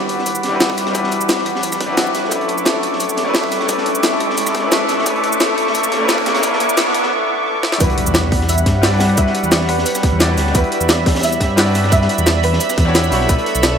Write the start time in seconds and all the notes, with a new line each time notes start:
Already playing: E2 G3 D4 E4 F#4 B4 F#5 D6, riser
0.09 closed hi-hat
0.19 snare
0.26 E2, closed hi-hat, shaker
0.35 shaker
0.43 G2, snare, closed hi-hat
0.49 G3 D4 E4
0.54 F#4 B4
0.60 snare, closed hi-hat, open hi-hat, shaker
0.70 kick
0.77 cross-stick, snare, closed hi-hat, shaker
0.86 cross-stick, snare
0.92 G3 D4 E4, kick, closed hi-hat, shaker
0.96 F#4 B4
1.03 snare
1.12 closed hi-hat, shaker
1.21 E2, shaker
1.29 snare, closed hi-hat, shaker
1.38 snare
1.46 cross-stick, closed hi-hat
1.55 snare
1.63 closed hi-hat, shaker
1.72 cross-stick, snare, shaker
1.80 E2, kick, snare, closed hi-hat
1.86 G3 D4 E4
1.91 F#4 B4
1.97 snare, closed hi-hat, shaker
2.07 shaker
2.14 B1, snare, closed hi-hat, shaker
2.25 snare
2.29 B1 A3 C#4 D4 A4 E5 C#6 D6, kick, closed hi-hat, shaker
2.34 E4 B4
2.41 closed hi-hat
2.48 closed hi-hat
2.58 B1, shaker
2.65 snare, closed hi-hat, shaker
2.83 closed hi-hat
2.93 snare
3.00 B1, closed hi-hat, shaker
3.10 shaker
3.17 D2, snare, closed hi-hat
3.23 A3 C#4 D4
3.28 E4 B4
3.34 snare, closed hi-hat, open hi-hat, shaker
3.44 kick
3.51 cross-stick, snare, closed hi-hat, shaker
3.60 cross-stick, snare
3.65 A3 C#4 D4, kick, closed hi-hat, shaker
3.70 E4 B4
3.78 snare
3.86 closed hi-hat
3.95 B1, shaker
4.03 snare, closed hi-hat, shaker
4.12 snare
4.20 cross-stick, closed hi-hat
4.30 snare
4.38 closed hi-hat, shaker
4.47 cross-stick, snare, shaker
4.54 kick, snare, closed hi-hat
4.60 B1 A3 C#4 D4
4.66 E4 B4
4.72 snare, closed hi-hat, shaker
4.88 A1, snare, closed hi-hat, shaker
4.99 snare
5.03 B1 A3 C#4 D4, kick, closed hi-hat, shaker
5.08 E4 B4
5.16 closed hi-hat
5.24 closed hi-hat
5.32 B1, shaker
5.40 snare, closed hi-hat, shaker
5.58 closed hi-hat
5.67 snare
5.75 B1, closed hi-hat, shaker
5.84 shaker
5.92 D2, snare, closed hi-hat
5.98 A3 C#4 D4
6.03 E4 B4
6.08 snare, closed hi-hat, open hi-hat, shaker
6.18 kick
6.26 cross-stick, snare, closed hi-hat, shaker
6.34 cross-stick, snare, closed hi-hat
6.40 A3 C#4 D4, kick, closed hi-hat, shaker
6.45 E4 B4
6.53 snare
6.60 closed hi-hat, shaker
6.69 B1, shaker
6.77 snare, closed hi-hat, shaker
6.87 snare
6.94 cross-stick, closed hi-hat
7.03 snare
7.63 snare
7.72 snare
7.77 E2 G3 D4 E4 B4 F#5 B5, kick, closed hi-hat, impact, shaker
7.82 F#4 B4
7.89 closed hi-hat
7.98 closed hi-hat
8.06 E2, shaker
8.14 D5, snare, closed hi-hat, shaker
8.32 kick, closed hi-hat, open hi-hat
8.41 snare
8.49 E2 E5, closed hi-hat, shaker
8.58 shaker
8.66 G2, kick, snare, closed hi-hat
8.82 G3 D4 E4 F#4 D5 F#5, snare, closed hi-hat, open hi-hat, shaker
8.91 G3 D4 E4 F#4 B4
9.00 cross-stick, snare, closed hi-hat, open hi-hat, shaker
9.09 cross-stick
9.14 G3 D4 E4 E5, kick, closed hi-hat, shaker
9.18 F#4 B4, closed hi-hat
9.27 snare
9.34 closed hi-hat
9.44 E2, shaker
9.52 D5, snare, closed hi-hat, shaker
9.61 snare
9.69 B4, cross-stick, closed hi-hat, open hi-hat
9.78 snare
9.86 closed hi-hat, shaker
9.95 cross-stick, snare, shaker
10.03 kick, snare, closed hi-hat
10.12 E2
10.19 G3 D4 E4 F#4 D5, snare, closed hi-hat, shaker
10.28 G3 D4 E4 F#4 B4
10.38 D2, snare, closed hi-hat, open hi-hat, shaker
10.47 snare
10.52 E2 G3 D4 E4 B4 E5, kick, closed hi-hat, shaker
10.57 F#4 B4
10.64 closed hi-hat
10.72 closed hi-hat
10.81 E2, shaker
10.89 D5, snare, closed hi-hat, shaker
11.06 kick, snare, closed hi-hat, open hi-hat
11.15 snare, closed hi-hat
11.20 E2, snare, closed hi-hat
11.23 E5, closed hi-hat, shaker
11.33 shaker
11.40 G2, kick, snare, closed hi-hat
11.56 G3 D4 E4 F#4 D5 F#5, snare, closed hi-hat, open hi-hat, shaker
11.65 G3 D4 E4 F#4 B4
11.75 cross-stick, snare, closed hi-hat, open hi-hat, shaker
11.84 cross-stick, snare
11.88 G3 D4 E4 E5, kick, closed hi-hat, shaker
11.93 F#4 B4
12.01 snare
12.09 closed hi-hat
12.18 E2, shaker
12.26 D5, snare, closed hi-hat, shaker
12.36 snare
12.43 B4, cross-stick, closed hi-hat, open hi-hat
12.53 snare
12.60 closed hi-hat, shaker
12.69 cross-stick, snare, shaker
12.78 E2, kick, snare, closed hi-hat
12.85 G3 D4 E4 F#4 C#5
12.95 snare, closed hi-hat, shaker
13.04 shaker
13.10 B1 G3 D4 E4 F#4 C#5, snare, closed hi-hat, open hi-hat, shaker
13.21 snare
13.26 B1 A3 B3 D4 A4 B4 C#6, kick, closed hi-hat, shaker
13.30 E4 B4, closed hi-hat
13.38 closed hi-hat
13.46 closed hi-hat
13.55 B1, shaker
13.63 D5, snare, closed hi-hat, shaker